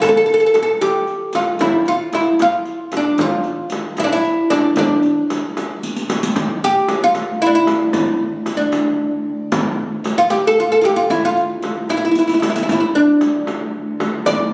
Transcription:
0.02 A4, riq, frame drum
0.09 A4
0.17 A4
0.26 A4, riq
0.34 A4
0.40 A4
0.46 A4
0.54 A4, riq, frame drum
0.63 A4
0.81 G4, riq, frame drum
1.07 riq
1.33 F4, riq, frame drum
1.59 E4, riq, frame drum
1.85 F4, riq
2.13 E4, riq, frame drum
2.39 F4, riq, frame drum
2.65 riq
2.92 riq, frame drum
2.97 D4
3.18 F4, riq, frame drum
3.44 riq
3.70 riq, frame drum
3.97 E4, riq, frame drum
4.04 D4
4.12 E4
4.24 riq
4.50 D4, riq, frame drum
4.76 D4, riq, frame drum
5.02 riq
5.30 riq, frame drum
5.57 riq, frame drum
5.83 riq
5.96 riq
6.10 riq, frame drum
6.23 riq
6.36 D2, riq, frame drum
6.64 G4
6.88 riq, frame drum
7.04 F4
7.15 riq, frame drum
7.42 E4
7.46 D4
7.55 E4
7.67 riq, frame drum
7.93 riq, frame drum
8.46 riq, frame drum
8.57 D4
8.72 riq, frame drum
9.52 D2, riq, frame drum
10.04 riq, frame drum
10.18 F4
10.30 G4, riq, frame drum
10.47 A4
10.60 F4
10.72 A4
10.81 F4 G4, riq, frame drum
10.96 F4
11.10 E4, riq, frame drum
11.25 F4
11.37 riq
11.62 riq, frame drum
11.89 E4, riq, frame drum
11.97 E4
12.05 E4
12.11 E4, riq
12.19 E4
12.27 E4, riq
12.34 E4
12.40 E4, riq, frame drum
12.50 E4
12.56 E4, riq
12.63 E4
12.69 D2 E4, riq, frame drum
12.80 E4
12.95 D4
13.21 riq, frame drum
13.47 riq, frame drum
14.00 riq, frame drum
14.26 D5, riq, frame drum

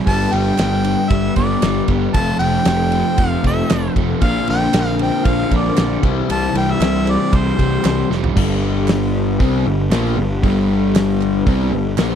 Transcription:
0.06 G1 G2 D3 G3 B3 D4 G4 B4 A5, kick, crash
0.31 G1 G3 G5, ride
0.58 G1 B3, snare, clap, ride
0.84 D4, ride
1.10 G1 G3 E5, kick, ride
1.36 G1 B3 D5, kick, ride
1.62 G1 G3, snare, clap, ride
1.88 G1 B3, kick, ride
2.14 F1 F2 C3 F3 A3 C4 F4 A4 C5 A5, kick, ride
2.18 C4 F4
2.39 F1 F3 G5, ride
2.65 F1 A3, snare, clap, ride
2.92 C4, ride
3.18 F1 F3 F5, kick, ride
3.43 F1 A3 E5, kick, ride
3.70 F1 F3, snare, clap, ride
3.96 F1 A3, kick, ride
4.21 A#1 A#2 D3 A#3 D4 F4 A#4 C5 F5, kick, ride
4.47 A#1 D3 G5, ride
4.73 A#1 A#3, snare, clap, ride
4.99 C4 G5, ride
5.25 A#1 D3 F5, kick, ride
5.51 A#1 A#3, kick, ride
5.56 D5
5.77 A#1 D3, snare, clap, ride
6.02 C2 C3 E3 G3 C4 E4 G4 C5, kick, ride
6.30 C2 C3 A5, ride
6.55 C2 E3 G5, ride
6.72 E5
6.80 C2 G3, snare, clap, ride
7.05 C4, ride
7.10 D5
7.33 C2 E3 C5, kick, ride
7.59 C2 G3, kick, ride
7.85 C2 E3, snare, clap, ride
8.10 F1 G3, snare
8.24 floor tom
8.36 G1 G2 D3 G3 B3 D4 G4 B4, kick, crash
8.88 snare, clap, open hi-hat
9.39 C2 C3 G3 C4, kick, open hi-hat
9.66 G1 G2 D3
9.91 A#1 A#2 F3 A#3, snare, clap, open hi-hat
10.05 snare
10.17 G1 G2 D3
10.43 G1 G2 D3 G3, kick, open hi-hat
10.95 snare, clap, open hi-hat
11.21 clap
11.46 C2 C3 G3 C4, kick, open hi-hat
11.71 G1 G2 D3
11.97 A#1 A#2 F3 A#3, snare, clap, open hi-hat

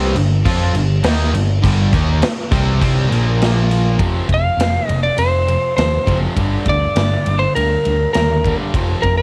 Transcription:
Already playing: C2 C3 G3 C4
0.15 G1 G2 D3, crash
0.45 F2 F3 C4 F4, kick, crash
0.73 G1 G2, crash
0.77 D3
1.03 D#2 D#3 A#3 D#4, snare, crash
1.33 G1 G2 D3, crash
1.64 G1 G2 D3 G3, kick, crash
1.93 D#2 D#3 A#3 D#4, kick, crash
2.21 muted overdriven electric guitar stroke, muted picked electric bass stroke, muted distorted electric guitar stroke, snare, crash
2.51 C2 C3 G3 C4, kick, crash
2.81 C2 C3 G3 C4, kick, crash
3.10 A#1 A#2 F3 A#3, crash
3.42 snare, crash
3.71 crash
3.99 F1 F2 C3 F3, kick, ride
4.29 F1 F2 C3, kick, ride
4.34 F5
4.58 F1 F2 C3, snare, ride
4.89 F1 F2 C3 D#5, ride
5.03 D5
5.18 F1 F2 C3 C5, ride
5.48 F2 C3, ride
5.77 D#2 F2 C3 C5, snare, ride
6.07 F#1 F2 C3 F3, kick, snare, ride
6.37 G1 G2 D3 G3, kick, ride
6.66 D2 G2 D3 D5, kick, ride
6.96 G1 G2 D3, snare, ride
7.26 G1 G2 D3, ride
7.39 C5
7.55 D2 G2 D3 A#4, ride
7.85 D2 G2 D3, ride
8.13 D#2 G2 D3 A#4, snare, ride
8.44 G2 D3 G3, kick, ride
8.74 F1 F2 C3 F3, kick, ride
9.02 F1 F2 C3 A#4, kick, ride
9.17 C5

